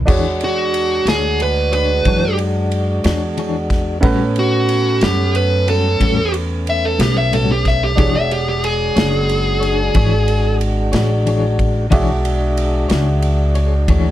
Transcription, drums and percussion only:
0.08 kick, crash
0.41 ride
0.74 ride
1.07 snare, ride
1.40 ride
1.73 ride
2.05 kick, ride
2.39 ride
2.72 ride
3.04 snare, ride
3.38 ride
3.70 kick, snare, ride
4.03 kick, ride
4.36 ride
4.69 ride
5.01 snare, ride
5.35 ride
5.68 ride
6.01 kick, ride
6.34 ride
6.67 ride
7.00 snare, ride
7.33 ride
7.65 kick, snare, ride
7.98 kick, ride
8.31 ride
8.64 ride
8.96 snare, ride
9.29 ride
9.63 ride
9.95 kick, ride
10.28 ride
10.61 ride
10.93 snare, ride
11.27 ride
11.59 kick, ride
11.92 kick, ride
12.25 ride
12.57 ride
12.90 snare, ride
13.22 ride
13.55 ride
13.88 kick, ride

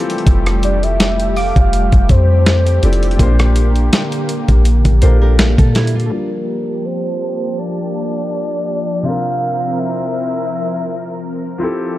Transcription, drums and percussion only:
0.10 closed hi-hat
0.18 closed hi-hat
0.27 kick, closed hi-hat
0.46 cross-stick, closed hi-hat
0.63 closed hi-hat
0.83 closed hi-hat
1.00 snare, closed hi-hat
1.20 closed hi-hat
1.36 open hi-hat
1.56 kick, closed hi-hat
1.73 closed hi-hat
1.92 kick, closed hi-hat
2.09 kick, closed hi-hat
2.46 snare, closed hi-hat
2.67 closed hi-hat
2.83 closed hi-hat, open hi-hat
2.93 closed hi-hat
3.03 closed hi-hat
3.11 closed hi-hat
3.19 kick, closed hi-hat
3.39 cross-stick, closed hi-hat
3.56 closed hi-hat
3.76 closed hi-hat
3.93 snare, closed hi-hat
4.12 closed hi-hat
4.29 closed hi-hat
4.48 kick, closed hi-hat
4.65 closed hi-hat
4.85 kick, closed hi-hat
5.02 closed hi-hat
5.39 snare, closed hi-hat
5.58 kick, closed hi-hat
5.75 snare, closed hi-hat, open hi-hat
5.87 closed hi-hat
6.00 closed hi-hat

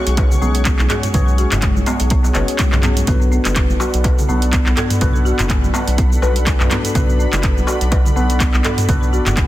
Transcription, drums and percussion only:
0.07 closed hi-hat, shaker
0.17 kick, closed hi-hat, darbuka tek, high conga, shaker
0.31 muted conga, low conga, shaker
0.42 high conga, shaker
0.55 closed hi-hat, shaker
0.65 kick, clap, closed hi-hat, muted conga, darbuka tek, shaker
0.79 clap, high conga, shaker
0.90 clap, closed hi-hat, darbuka tek, darbuka dum, shaker
1.03 closed hi-hat, mid tom, muted conga, shaker
1.14 kick, closed hi-hat, low conga, shaker
1.28 shaker
1.38 closed hi-hat, shaker
1.52 clap, closed hi-hat, mid tom, muted conga, darbuka ka, high conga, darbuka tek, darbuka dum, shaker
1.62 kick, clap, closed hi-hat, shaker
1.76 high conga, shaker
1.86 closed hi-hat, darbuka ka, darbuka tek, shaker
2.00 closed hi-hat, shaker
2.10 kick, closed hi-hat, high conga, shaker
2.24 muted conga, darbuka tek, shaker
2.34 clap, closed hi-hat, darbuka ka, darbuka tek, high conga, shaker
2.48 closed hi-hat, shaker
2.59 kick, clap, closed hi-hat, muted conga, high conga, shaker
2.72 clap, mid tom, darbuka ka, darbuka tek, low conga, shaker
2.83 clap, closed hi-hat, high conga, darbuka dum, shaker
2.97 closed hi-hat, muted conga, shaker
3.07 kick, closed hi-hat, low conga, shaker
3.22 shaker
3.32 shaker
3.45 clap, closed hi-hat, muted conga, darbuka ka, high conga, darbuka tek, shaker
3.56 kick, clap, closed hi-hat, shaker
3.70 high conga, shaker
3.80 darbuka ka, muted conga, darbuka tek, shaker
3.94 closed hi-hat, shaker
4.04 kick, closed hi-hat, darbuka tek, high conga, shaker
4.18 muted conga, low conga, shaker
4.29 high conga, shaker
4.42 closed hi-hat, shaker
4.53 kick, clap, closed hi-hat, muted conga, darbuka tek, shaker
4.66 clap, high conga, shaker
4.77 clap, closed hi-hat, darbuka tek, darbuka dum, shaker
4.90 closed hi-hat, mid tom, muted conga, shaker
5.01 kick, closed hi-hat, low conga, shaker
5.15 shaker
5.26 shaker
5.39 clap, closed hi-hat, mid tom, darbuka ka, muted conga, darbuka tek, high conga, darbuka dum, shaker
5.50 kick, clap, closed hi-hat, shaker
5.64 high conga, shaker
5.74 darbuka ka, darbuka tek, shaker
5.88 closed hi-hat, shaker
5.98 kick, closed hi-hat, high conga, shaker
6.12 muted conga, shaker
6.22 darbuka ka, high conga, darbuka tek, shaker
6.36 closed hi-hat, shaker
6.47 kick, clap, closed hi-hat, muted conga, high conga, shaker
6.60 clap, mid tom, darbuka ka, darbuka tek, shaker
6.70 clap, closed hi-hat, high conga, darbuka dum, shaker
6.85 closed hi-hat, muted conga, shaker
6.95 kick, closed hi-hat, low conga, shaker
7.09 shaker
7.20 shaker
7.33 clap, closed hi-hat, darbuka ka, muted conga, high conga, darbuka tek, shaker
7.43 kick, clap, closed hi-hat, shaker
7.57 high conga, shaker
7.67 muted conga, darbuka ka, darbuka tek, shaker
7.81 closed hi-hat, shaker
7.92 kick, closed hi-hat, darbuka tek, high conga, shaker
8.05 muted conga, low conga, shaker
8.16 high conga, shaker
8.30 closed hi-hat, shaker
8.39 kick, clap, closed hi-hat, muted conga, darbuka tek, shaker
8.54 clap, high conga, shaker
8.64 clap, closed hi-hat, darbuka tek, darbuka dum, shaker
8.78 closed hi-hat, mid tom, muted conga, shaker
8.89 kick, closed hi-hat, low conga, shaker
9.03 shaker
9.13 shaker
9.26 clap, closed hi-hat, mid tom, muted conga, darbuka ka, high conga, darbuka tek, darbuka dum, shaker
9.37 kick, clap, closed hi-hat, shaker

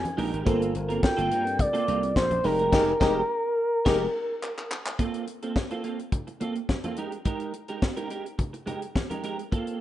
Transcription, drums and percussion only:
0.05 closed hi-hat, high conga
0.18 open hi-hat
0.34 closed hi-hat
0.47 kick, closed hi-hat
0.62 closed hi-hat
0.75 closed hi-hat
0.90 closed hi-hat
1.03 kick, snare, high conga
1.18 closed hi-hat
1.31 closed hi-hat
1.47 closed hi-hat
1.59 kick, closed hi-hat, muted conga, low conga
1.74 closed hi-hat
1.88 closed hi-hat, muted conga
2.03 closed hi-hat
2.16 kick, snare, high conga
2.31 closed hi-hat, high conga
2.44 open hi-hat
2.59 closed hi-hat
2.73 kick, snare, crash
3.01 kick, snare
3.86 kick, snare, crash
4.43 clap
4.58 clap
4.71 clap
4.86 clap
4.99 kick, closed hi-hat, muted conga
5.14 closed hi-hat
5.27 closed hi-hat
5.42 closed hi-hat
5.56 kick, snare, high conga
5.70 closed hi-hat
5.84 closed hi-hat
5.99 closed hi-hat
6.12 kick, closed hi-hat, muted conga, low conga
6.27 closed hi-hat
6.41 closed hi-hat, muted conga
6.55 closed hi-hat
6.69 kick, snare, high conga
6.84 closed hi-hat, high conga
6.96 closed hi-hat
7.12 closed hi-hat
7.25 kick, closed hi-hat, muted conga
7.40 closed hi-hat
7.54 closed hi-hat
7.68 closed hi-hat
7.82 kick, snare, high conga
7.97 closed hi-hat
8.10 closed hi-hat
8.26 closed hi-hat
8.39 kick, closed hi-hat, muted conga, low conga
8.54 closed hi-hat
8.67 closed hi-hat, muted conga, low conga
8.82 closed hi-hat
8.96 kick, snare, high conga
9.11 closed hi-hat, high conga
9.23 closed hi-hat
9.39 closed hi-hat
9.52 kick, closed hi-hat
9.67 closed hi-hat

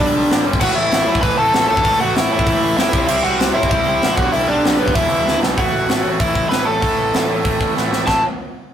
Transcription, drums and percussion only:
0.30 snare, open hi-hat
0.53 kick
0.61 kick, crash
0.92 snare, open hi-hat
1.15 kick
1.23 kick, open hi-hat
1.53 snare, open hi-hat
1.77 kick
1.85 kick, open hi-hat
2.16 snare, open hi-hat
2.39 kick
2.46 kick, open hi-hat
2.78 snare, open hi-hat
2.93 kick
3.08 crash
3.40 snare, open hi-hat
3.63 kick
3.71 kick, open hi-hat
4.02 snare, open hi-hat
4.18 kick
4.33 open hi-hat
4.64 snare, open hi-hat
4.88 kick
4.95 kick, open hi-hat
5.28 snare
5.43 snare
5.58 kick, open hi-hat
5.89 snare, open hi-hat
6.20 kick, open hi-hat
6.35 kick
6.51 snare, open hi-hat
6.82 kick, open hi-hat
7.14 snare, open hi-hat
7.45 kick, open hi-hat
7.61 kick
7.77 snare
7.93 snare
8.07 kick, snare, china

